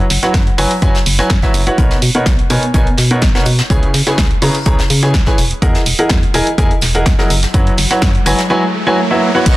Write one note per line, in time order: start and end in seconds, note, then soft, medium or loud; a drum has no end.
0.10 0.18 F#1 medium
0.10 snare soft
0.10 closed hi-hat medium
0.10 open hi-hat loud
0.23 0.39 F#3 medium
0.23 0.39 E4 medium
0.23 0.39 F#4 medium
0.23 0.39 B4 medium
0.23 0.39 C#5 medium
0.23 0.39 F#5 medium
0.23 snare soft
0.23 closed hi-hat soft
0.34 0.50 F#2 medium
0.34 kick loud
0.34 snare loud
0.34 closed hi-hat medium
0.47 closed hi-hat soft
0.58 0.66 F#1 medium
0.58 0.69 F#3 medium
0.58 0.69 E4 medium
0.58 0.69 F#4 medium
0.58 0.69 B4 medium
0.58 0.69 C#5 medium
0.58 0.69 G#5 loud
0.58 open hi-hat medium
0.71 closed hi-hat medium
0.82 0.90 F#2 medium
0.82 0.93 F#3 medium
0.82 0.93 E4 medium
0.82 0.93 F#4 medium
0.82 0.93 B4 medium
0.82 0.93 C#5 medium
0.82 0.93 G#5 loud
0.82 kick loud
0.82 closed hi-hat medium
0.95 snare medium
0.95 closed hi-hat soft
1.06 1.22 F#1 loud
1.06 closed hi-hat medium
1.06 open hi-hat loud
1.19 1.29 F#3 medium
1.19 1.29 E4 medium
1.19 1.29 F#4 medium
1.19 1.29 B4 medium
1.19 1.29 C#5 medium
1.19 1.29 G#5 loud
1.19 snare soft
1.19 closed hi-hat soft
1.30 1.38 F#2 loud
1.30 kick loud
1.30 snare loud
1.30 closed hi-hat medium
1.42 1.59 F#3 medium
1.42 1.59 E4 medium
1.42 1.59 F#4 medium
1.42 1.59 B4 medium
1.42 1.59 C#5 medium
1.42 1.59 E5 medium
1.42 kick medium
1.42 snare soft
1.54 1.70 F#1 loud
1.54 closed hi-hat medium
1.54 open hi-hat loud
1.67 1.76 E4 medium
1.67 1.76 F#4 medium
1.67 1.76 B4 medium
1.67 1.76 C#5 medium
1.67 1.76 F#5 medium
1.67 closed hi-hat soft
1.78 1.94 B1 loud
1.78 1.95 B2 medium
1.78 1.95 D#4 medium
1.78 1.95 A#4 medium
1.78 1.95 B4 medium
1.78 1.95 C#5 medium
1.78 1.95 F#5 medium
1.78 kick loud
1.78 closed hi-hat medium
1.91 snare soft
1.91 closed hi-hat soft
2.02 2.10 B2 medium
2.02 closed hi-hat medium
2.02 open hi-hat loud
2.15 2.31 B2 medium
2.15 2.31 D#4 medium
2.15 2.31 A#4 medium
2.15 2.31 B4 medium
2.15 2.31 C#5 medium
2.15 2.31 F#5 medium
2.15 closed hi-hat medium
2.26 2.42 B1 medium
2.26 kick loud
2.26 snare loud
2.26 closed hi-hat medium
2.39 closed hi-hat soft
2.50 2.58 B2 medium
2.50 2.61 B2 loud
2.50 2.61 D#4 medium
2.50 2.61 A#4 medium
2.50 2.61 B4 medium
2.50 2.61 C#5 medium
2.50 2.61 G#5 loud
2.50 closed hi-hat medium
2.50 open hi-hat medium
2.63 closed hi-hat medium
2.74 2.90 B1 medium
2.74 2.85 B2 loud
2.74 2.85 D#4 medium
2.74 2.85 A#4 medium
2.74 2.85 B4 medium
2.74 2.85 C#5 medium
2.74 2.85 G#5 loud
2.74 kick loud
2.74 closed hi-hat medium
2.87 closed hi-hat soft
2.97 3.24 B2 medium
2.97 snare soft
2.97 closed hi-hat medium
2.97 open hi-hat loud
3.11 3.21 B2 medium
3.11 3.21 D#4 medium
3.11 3.21 A#4 medium
3.11 3.21 B4 medium
3.11 3.21 C#5 medium
3.11 3.21 F#5 medium
3.11 closed hi-hat soft
3.22 3.30 B1 medium
3.22 kick loud
3.22 snare loud
3.22 closed hi-hat medium
3.35 3.45 B2 medium
3.35 3.45 D#4 medium
3.35 3.45 A#4 medium
3.35 3.45 B4 medium
3.35 3.45 C#5 medium
3.35 3.45 F#5 medium
3.35 snare medium
3.45 3.62 B2 medium
3.45 closed hi-hat medium
3.45 open hi-hat medium
3.59 snare soft
3.59 closed hi-hat soft
3.70 3.86 C#2 loud
3.70 3.87 C#3 medium
3.70 3.87 E4 medium
3.70 3.87 G#4 medium
3.70 3.87 B4 medium
3.70 3.87 C#5 medium
3.70 3.87 G#5 medium
3.70 kick loud
3.70 closed hi-hat medium
3.83 closed hi-hat soft
3.94 4.02 C#3 medium
3.94 snare soft
3.94 closed hi-hat medium
3.94 open hi-hat medium
4.07 4.23 C#3 medium
4.07 4.23 E4 medium
4.07 4.23 G#4 medium
4.07 4.23 B4 medium
4.07 4.23 C#5 medium
4.07 4.23 G#5 medium
4.07 snare soft
4.07 closed hi-hat medium
4.18 4.34 C#2 medium
4.18 kick loud
4.18 snare loud
4.18 closed hi-hat medium
4.31 closed hi-hat soft
4.42 4.50 C#3 medium
4.42 4.53 C#3 loud
4.42 4.53 E4 medium
4.42 4.53 G#4 medium
4.42 4.53 B4 medium
4.42 4.53 C#5 medium
4.42 4.53 A#5 loud
4.42 open hi-hat medium
4.55 closed hi-hat medium
4.66 4.82 C#2 medium
4.66 4.77 C#3 loud
4.66 4.77 E4 medium
4.66 4.77 G#4 medium
4.66 4.77 B4 medium
4.66 4.77 C#5 medium
4.66 4.77 A#5 loud
4.66 kick loud
4.66 closed hi-hat medium
4.79 snare medium
4.79 closed hi-hat soft
4.90 5.16 C#3 medium
4.90 closed hi-hat medium
4.90 open hi-hat loud
5.03 5.13 C#3 medium
5.03 5.13 E4 medium
5.03 5.13 G#4 medium
5.03 5.13 B4 medium
5.03 5.13 C#5 medium
5.03 5.13 G#5 medium
5.03 snare soft
5.03 closed hi-hat soft
5.14 5.22 C#2 medium
5.14 kick loud
5.14 snare loud
5.14 closed hi-hat medium
5.26 5.37 E3 medium
5.26 5.37 E4 medium
5.26 5.37 G#4 medium
5.26 5.37 B4 medium
5.26 5.37 C#5 medium
5.26 5.37 G#5 loud
5.26 kick medium
5.26 snare medium
5.38 5.54 E1 medium
5.38 closed hi-hat medium
5.38 open hi-hat medium
5.51 closed hi-hat medium
5.62 5.78 E2 loud
5.62 5.79 E3 medium
5.62 5.79 E4 medium
5.62 5.79 G#4 medium
5.62 5.79 A#4 medium
5.62 5.79 D#5 medium
5.62 5.79 F#5 medium
5.62 kick loud
5.62 closed hi-hat medium
5.62 riser medium
5.75 snare soft
5.75 closed hi-hat soft
5.86 5.94 E1 medium
5.86 closed hi-hat medium
5.86 open hi-hat loud
5.99 6.15 E3 medium
5.99 6.15 E4 medium
5.99 6.15 G#4 medium
5.99 6.15 A#4 medium
5.99 6.15 D#5 medium
5.99 6.15 F#5 medium
5.99 closed hi-hat medium
6.09 6.26 E2 medium
6.09 kick loud
6.09 snare loud
6.09 closed hi-hat medium
6.23 closed hi-hat soft
6.34 6.42 E1 medium
6.34 6.45 E3 medium
6.34 6.45 E4 medium
6.34 6.45 G#4 medium
6.34 6.45 A#4 medium
6.34 6.45 D#5 medium
6.34 6.45 G#5 loud
6.34 closed hi-hat medium
6.34 open hi-hat medium
6.47 closed hi-hat medium
6.58 6.74 E2 medium
6.58 6.69 E3 loud
6.58 6.69 E4 medium
6.58 6.69 G#4 medium
6.58 6.69 A#4 medium
6.58 6.69 D#5 medium
6.58 6.69 G#5 loud
6.58 kick loud
6.58 closed hi-hat medium
6.71 closed hi-hat soft
6.81 7.08 E1 medium
6.81 snare medium
6.81 closed hi-hat medium
6.81 open hi-hat loud
6.95 7.05 E3 medium
6.95 7.05 E4 medium
6.95 7.05 G#4 medium
6.95 7.05 A#4 medium
6.95 7.05 D#5 medium
6.95 7.05 F#5 loud
6.95 closed hi-hat medium
7.06 7.14 E2 medium
7.06 kick loud
7.06 snare loud
7.06 closed hi-hat medium
7.19 7.29 F#3 medium
7.19 7.29 E4 medium
7.19 7.29 G#4 medium
7.19 7.29 A#4 medium
7.19 7.29 D#5 medium
7.19 7.29 F#5 medium
7.19 snare soft
7.30 7.46 F#1 medium
7.30 closed hi-hat medium
7.30 open hi-hat medium
7.43 snare soft
7.43 closed hi-hat medium
7.54 7.70 F#2 loud
7.54 7.71 F#3 medium
7.54 7.71 E4 medium
7.54 7.71 F#4 medium
7.54 7.71 B4 medium
7.54 7.71 C#5 medium
7.54 7.71 F#5 medium
7.54 kick loud
7.54 closed hi-hat medium
7.67 closed hi-hat soft
7.77 7.86 F#1 medium
7.77 snare soft
7.77 closed hi-hat medium
7.77 open hi-hat medium
7.90 8.07 F#3 medium
7.90 8.07 E4 medium
7.90 8.07 F#4 medium
7.90 8.07 B4 medium
7.90 8.07 C#5 medium
7.90 8.07 F#5 medium
7.90 snare soft
7.90 closed hi-hat medium
8.02 8.18 F#2 medium
8.02 kick loud
8.02 snare loud
8.02 closed hi-hat medium
8.15 closed hi-hat soft
8.26 8.34 F#1 medium
8.26 8.37 F#3 medium
8.26 8.37 E4 medium
8.26 8.37 F#4 medium
8.26 8.37 B4 medium
8.26 8.37 C#5 medium
8.26 8.37 G#5 loud
8.26 closed hi-hat medium
8.26 open hi-hat medium
8.38 snare soft
8.38 closed hi-hat medium
8.50 8.61 F#3 loud
8.50 8.61 E4 medium
8.50 8.61 F#4 medium
8.50 8.61 B4 medium
8.50 8.61 C#5 medium
8.50 8.61 G#5 loud
8.87 8.97 F#3 medium
8.87 8.97 E4 medium
8.87 8.97 F#4 medium
8.87 8.97 B4 medium
8.87 8.97 C#5 medium
8.87 8.97 G#5 loud
9.11 9.27 F#3 medium
9.11 9.27 E4 medium
9.11 9.27 F#4 medium
9.11 9.27 B4 medium
9.11 9.27 C#5 medium
9.11 9.27 E5 medium
9.35 9.44 E4 medium
9.35 9.44 F#4 medium
9.35 9.44 B4 medium
9.35 9.44 C#5 medium
9.35 9.44 F#5 medium
9.46 9.57 B1 loud
9.46 9.57 B2 medium
9.46 9.57 D#4 medium
9.46 9.57 A#4 medium
9.46 9.57 B4 medium
9.46 9.57 C#5 medium
9.46 9.57 F#5 medium
9.46 9.57 A#5 medium
9.46 9.57 C#6 medium
9.46 9.57 D#6 medium
9.46 kick loud
9.46 closed hi-hat medium
9.46 closed hi-hat loud
9.46 crash loud
9.46 impact medium